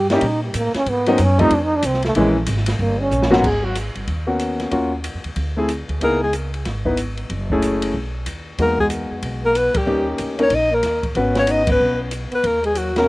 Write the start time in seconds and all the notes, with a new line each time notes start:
Already playing: G2
0.10 G3 A#3 C#4 D#4 E4 G4, snare, ride
0.21 A#2 D#4, kick, ride
0.44 G3
0.54 A2 A#3, kick, hi-hat pedal, ride
0.74 C#4, muted upright bass stroke, snare, ride
0.86 G#2 B3, kick, ride
1.06 F#3 A#3 B3 C4 C#4 D#4, ride
1.18 F#2, kick, hi-hat pedal, ride
1.22 C#4
1.38 F3 G3 A3 C4 D#4, kick, ride
1.51 F2 D4, kick, ride
1.64 D#4
1.76 D4
1.83 C2 C4, kick, hi-hat pedal, ride
1.94 snare
2.03 A3, snare, ride
2.15 A#1 E3 G#3 A#3 C#4 E4, kick, ride
2.46 G#1, kick, hi-hat pedal, ride
2.57 snare
2.66 snare, ride
2.79 G1 A#3, kick
2.99 C#4
3.11 A#1, hi-hat pedal
3.22 snare
3.30 G#2 F#3 A#3 B3 C#4 F#4, snare
3.43 G#1 G#3 G#4, kick, crash
3.62 F#3 F#4
3.75 hi-hat pedal, ride
3.95 G1, ride
4.08 D#2, kick, ride
4.27 A#3 B3 C#4 F#4
4.39 hi-hat pedal, ride
4.60 snare, ride
4.71 D#2 A#3 C#4 F4 F#4, kick, ride
5.04 hi-hat pedal, ride
5.14 F2
5.24 D#2, ride
5.36 D2, kick, ride
5.57 A3 C4 E4 G#4
5.69 hi-hat pedal, ride
5.89 D2, ride
6.01 C#2 A#3 B3 D#4 E4 G#4 A#4, kick, ride
6.22 G#3 G#4
6.33 hi-hat pedal, ride
6.54 ride
6.65 G#1, kick, snare, ride
6.85 B3 D#4 E4 B4, kick
6.97 hi-hat pedal, ride
7.17 ride
7.30 F#1, kick, ride
7.50 A3 C#4 E4 G#4, kick
7.62 hi-hat pedal, ride
7.82 ride
7.94 B1, kick
8.26 D#2, hi-hat pedal, ride
8.58 E2 G#3 A#3 B3 D#4 F#4 A#4, kick, ride
8.79 G#3 G#4, kick
8.90 hi-hat pedal, ride
9.11 F2
9.23 B1, kick, ride
9.44 A#3 A#4
9.55 B3 B4, hi-hat pedal, ride
9.74 G3 G4, muted upright bass stroke, kick, ride
9.86 D#2 A#3 C#4 D#4 G4
10.18 D2, hi-hat pedal, ride
10.38 A#3 C#4 D#4 A#4, ride
10.43 C#5
10.50 A#1 D#4, kick, ride
10.55 D#5
10.71 A#3
10.75 A#4
10.83 D#2, snare, hi-hat pedal, ride
11.03 kick, ride
11.15 G#1 B3 C#4 F#4 B4, kick, ride
11.33 C#4, snare, ride
11.39 C#5
11.47 D#4 D#5, hi-hat pedal, ride
11.65 B3, kick, ride
11.72 B4
11.80 B1
12.11 hi-hat pedal, ride
12.30 B3, muted upright bass stroke, ride
12.35 B4
12.43 D#2 A#3 A#4, kick, ride
12.63 G#3 G#4, ride
12.75 F#3 F#4, hi-hat pedal, ride
12.95 B2 A#3 C#4 F#4 A#4, snare, ride